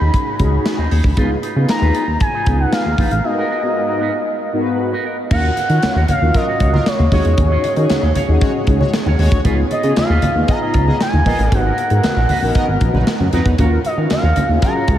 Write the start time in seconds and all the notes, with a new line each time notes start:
Already playing: B5
0.00 D#2, muted clean electric guitar stroke
0.14 muted clean electric guitar stroke, kick, closed hi-hat
0.27 muted clean electric guitar stroke
0.39 C#2 C#4 D#4 F#4 G#4, kick, closed hi-hat
0.52 muted clean electric guitar stroke
0.65 muted clean electric guitar stroke, snare, clap, closed hi-hat
0.78 D#2 D#4 G#4 D#5
0.91 D#2 D#4 G#4 C#5, open hi-hat
1.04 D2, muted clean electric guitar stroke, kick
1.17 C#2 B3 D#4 F4 G#4 B4, kick, closed hi-hat
1.31 muted clean electric guitar stroke
1.43 D#4 F4 B4, closed hi-hat
1.56 C#3 B3 D#4 F4 G#4 B4
1.69 A#5, muted clean electric guitar stroke, snare, clap, closed hi-hat
1.82 D#2 D#4 F4 B4
1.95 D#4 F4 B4, closed hi-hat
2.08 D#2
2.20 G#5, muted clean electric guitar stroke, kick, closed hi-hat
2.34 D#4 F4 B4
2.46 C#2 B3 D#4 F4 G#4 B4, kick, closed hi-hat
2.59 F#5, muted clean electric guitar stroke
2.73 F5, muted clean electric guitar stroke, snare, clap, closed hi-hat
2.85 D#2, muted clean electric guitar stroke
2.98 A#1 D#4 F4 B4, kick, open hi-hat
3.11 A1 F5, muted clean electric guitar stroke, closed hi-hat
3.24 G#2 B3 D#4 F#4 A#4 D#5, muted clean electric guitar stroke
3.37 B3 F#4 A#4
3.50 B3 F#4 A#4
3.62 G#2 B3 D#4 F#4 A#4, muted clean electric guitar stroke
3.76 muted clean electric guitar stroke
3.89 B3 F#4 A#4
4.01 B3 F#4 B4
4.14 muted clean electric guitar stroke
4.27 muted clean electric guitar stroke
4.41 muted clean electric guitar stroke
4.53 G#2 B3 D#4 F#4 A#4
4.60 B4
4.66 muted clean electric guitar stroke
4.79 muted clean electric guitar stroke
4.92 B3 F#4 B4
5.05 B3 F#4 A#4
5.18 muted clean electric guitar stroke
5.30 D#2 C#4 F4 F#4 A#4 C#5 F5 F#5, kick, crash, muted conga, low conga
5.44 muted clean electric guitar stroke
5.56 F#4 C#5 F5, closed hi-hat, muted conga
5.69 D#3 C#4 F4 F#4 C#5 F5, closed hi-hat
5.82 muted clean electric guitar stroke, snare, clap, closed hi-hat, muted conga, high conga
5.95 D#2 F#4 C#5 F5
6.08 F#4 C#5 F5, closed hi-hat, muted conga, high conga, low conga
6.21 D#2 C#4 F4 F#4 A#4, muted clean electric guitar stroke
6.34 F#3 F4 A#4 D#5, muted clean electric guitar stroke, kick, closed hi-hat, muted conga
6.47 F#4 C#5 F5
6.60 C#2 F#4 C#5 F5, kick, closed hi-hat
6.73 F#3 F4 A#4, high conga
6.86 C#5, muted clean electric guitar stroke, snare, clap, closed hi-hat, muted conga
6.99 D#2, muted clean electric guitar stroke, high conga
7.11 D#2 G#3 C#4 D#4 F#4 G#4 C#5 D#5, kick, open hi-hat, muted conga, low conga
7.25 E2, muted clean electric guitar stroke, closed hi-hat
7.38 D#2, muted clean electric guitar stroke, kick, closed hi-hat, muted conga, low conga
7.51 G#4 C#5 D#5
7.63 G#4 C#5 D#5, closed hi-hat, muted conga
7.76 D#3 C#4 D#4 F#4 G#4, closed hi-hat
7.90 muted clean electric guitar stroke, snare, clap, closed hi-hat, muted conga, high conga
8.03 D#2 G#4 C#5 D#5
8.15 G#4 C#5 F5, closed hi-hat, high conga, low conga
8.28 D#2 C#4 D#4 F#4 G#4, muted clean electric guitar stroke
8.41 G#3 F#4 C#5, muted clean electric guitar stroke, kick, closed hi-hat
8.55 muted clean electric guitar stroke
8.67 C#2, kick, closed hi-hat
8.80 G#3 F#4 C#5, muted clean electric guitar stroke, high conga
8.93 muted clean electric guitar stroke, snare, clap, closed hi-hat, muted conga
9.06 D#2 G#4 C#5 F5, high conga
9.19 D#2 G#3 F#4 G#4 C#5 D#5, open hi-hat, muted conga, low conga
9.32 D2, muted clean electric guitar stroke, kick, closed hi-hat
9.44 C#2 B3 D#4 F4 G#4 B4 D#5, kick, closed hi-hat, muted conga, low conga
9.57 muted clean electric guitar stroke
9.70 F4 B4 D#5, closed hi-hat, muted conga
9.83 C#3 B3 D#4 F4 G#4 B4 D#5, closed hi-hat
9.96 F5, snare, clap, closed hi-hat, muted conga, high conga
10.09 D#2 F4 B4 D#5
10.22 F4 B4 D#5, closed hi-hat, muted conga, high conga, low conga
10.35 D#2 B3 D#4 F4 G#4, muted clean electric guitar stroke
10.48 B3 G#4 D#5 A#5, muted clean electric guitar stroke, kick, closed hi-hat, muted conga
10.61 F4 B4 D#5
10.74 C#2 F4 B4 D#5, kick, closed hi-hat
10.87 B3 G#4 D#5, muted clean electric guitar stroke, high conga
11.00 G#5, muted clean electric guitar stroke, snare, clap, closed hi-hat
11.13 D#2, muted clean electric guitar stroke, high conga
11.26 A#1 B3 F4 A#4 B4 D#5, kick, open hi-hat, muted conga, low conga
11.39 A1, muted clean electric guitar stroke, closed hi-hat
11.52 G#1 B3 D#4 F#4 A#4 F#5, muted clean electric guitar stroke, kick, closed hi-hat, muted conga, low conga
11.65 B3 F#4 A#4
11.77 B3 F#4 A#4, closed hi-hat
11.90 G#2 B3 D#4 F#4 A#4, muted clean electric guitar stroke, closed hi-hat
12.03 muted clean electric guitar stroke, snare, clap, closed hi-hat, high conga
12.16 A#1 B3 F#4 A#4
12.29 B3 F#4 B4, open hi-hat, high conga, low conga
12.42 A#1 B3 D#4 F#4 A#4, muted clean electric guitar stroke
12.55 B3 A#4 D#5, muted clean electric guitar stroke, kick, closed hi-hat
12.68 G#1, muted clean electric guitar stroke
12.81 A#1, kick, closed hi-hat, muted conga
12.94 A#1 F#3 D#4 B4, muted clean electric guitar stroke, high conga
13.07 muted clean electric guitar stroke, snare, clap, closed hi-hat, muted conga
13.20 F#2, muted clean electric guitar stroke, high conga
13.33 F2 F#3 B3 D#4 F#4 A#4 B4, closed hi-hat, low conga
13.46 E2, muted clean electric guitar stroke, kick, closed hi-hat
13.58 D#2 C#4 F4 F#4 A#4 C#5 F5, kick, closed hi-hat, muted conga, low conga
13.72 muted clean electric guitar stroke
13.85 F#4 C#5 D#5 F5, closed hi-hat, muted conga
13.97 D#3 C#4 F4 F#4 A#4 C#5 F5
14.10 F5, muted clean electric guitar stroke, snare, clap, closed hi-hat, muted conga, high conga
14.23 D#2 F#4 C#5 F5
14.36 F#4 C#5 F5, closed hi-hat, muted conga, high conga, low conga
14.49 D#2 C#4 F4 F#4 G#4, muted clean electric guitar stroke
14.62 F#3 F4 A#4 A#5, muted clean electric guitar stroke, kick, closed hi-hat
14.75 F#4 C#5 F5
14.88 C#2 F#4 C#5 F5, kick, closed hi-hat, muted conga